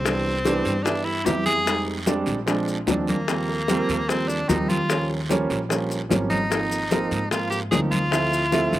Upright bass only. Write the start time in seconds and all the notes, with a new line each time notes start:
Already playing: C2
0.66 G2
1.26 F2
2.27 A#1
2.87 D#2
3.89 D#2
4.49 D#2
5.50 A#1
6.10 G#1
7.11 G#2
7.72 D2
8.73 G1